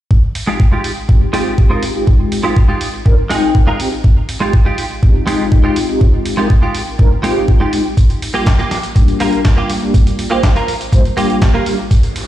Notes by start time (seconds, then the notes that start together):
0.11 kick
0.35 open hi-hat
0.47 G#3 C4 D#4 F4 G4
0.60 kick
0.72 G#3 D#4 F4 G4
0.84 open hi-hat
1.08 G#3 C4 D#4 F4 G4, muted clean electric guitar stroke, kick
1.32 G#3 C4 D#4 F4 G4, open hi-hat
1.58 kick
1.70 G#3 D#4 F4 A#4
1.83 open hi-hat
1.95 G#3 C4 D#4 F4 G4, muted clean electric guitar stroke
2.07 kick
2.32 open hi-hat
2.43 G#3 C4 D#4 F4 G4 A#4
2.57 kick
2.68 G#3 D#4 F4 G4
2.81 open hi-hat
3.05 G#3 C4 D#4 F4 A#4, muted clean electric guitar stroke, kick
3.30 G#3 C4 D#4 F4 G#4 G5, open hi-hat
3.55 kick
3.67 G#3 D#4 F4 A#4
3.79 G#3 C4 D#4 F4 G4, open hi-hat
3.92 muted clean electric guitar stroke
4.04 kick
4.29 open hi-hat
4.40 G#3 C4 D#4 F4 G4
4.53 kick
4.65 G#3 D#4 F4 G4
4.78 open hi-hat
5.02 G#3 C4 D#4 F4 G4, muted clean electric guitar stroke, kick
5.27 G#3 C4 D#4 F4 G4, open hi-hat
5.52 kick
5.63 G#3 D#4 F4 G4
5.76 open hi-hat
5.89 G#3 C4 D#4 F4 G4, muted clean electric guitar stroke
6.01 kick
6.25 open hi-hat
6.37 G#3 C4 D#4 F4 G4 A#4
6.50 kick
6.61 G#3 D#4 F4 G4
6.75 open hi-hat
6.98 G#3 C4 D#4 F4 A#4, muted clean electric guitar stroke, kick
7.23 G#3 C4 D#4 F4 G4, open hi-hat
7.48 kick
7.60 G#3 D#4 F4 G4
7.73 G#3 C4 D#4 F4 G4, open hi-hat
7.85 muted clean electric guitar stroke
7.97 kick, closed hi-hat
8.10 closed hi-hat
8.22 open hi-hat
8.34 G3 A#3 D4 F4 G4
8.46 kick, snare, closed hi-hat
8.59 A#3 F4 G4, closed hi-hat
8.71 snare, open hi-hat
8.83 closed hi-hat
8.96 G3 A#3 D4 F4 G4, muted clean electric guitar stroke, kick, closed hi-hat
9.08 closed hi-hat
9.20 G3 A#3 D4 F4 G4 A#4, open hi-hat
9.33 closed hi-hat
9.45 kick, snare, closed hi-hat
9.57 A#3 F4 G4
9.70 open hi-hat
9.82 G3 A#3 D4 F4 G4, muted clean electric guitar stroke
9.94 kick, closed hi-hat
10.07 closed hi-hat
10.19 open hi-hat
10.30 G3 A#3 D4 F4 G4 C5
10.43 kick, snare, closed hi-hat
10.56 A#3 F4 A#4, closed hi-hat
10.68 open hi-hat
10.81 closed hi-hat
10.92 G3 A#3 D4 F4 C5, muted clean electric guitar stroke, kick, closed hi-hat
11.05 closed hi-hat
11.17 G3 A#3 D4 F4 G4, open hi-hat
11.30 closed hi-hat
11.42 kick, snare, closed hi-hat
11.54 A#3 F4 A#4
11.66 G3 A#3 D4 F4 G4, open hi-hat
11.78 muted clean electric guitar stroke
11.91 kick, closed hi-hat, riser
12.03 closed hi-hat
12.16 open hi-hat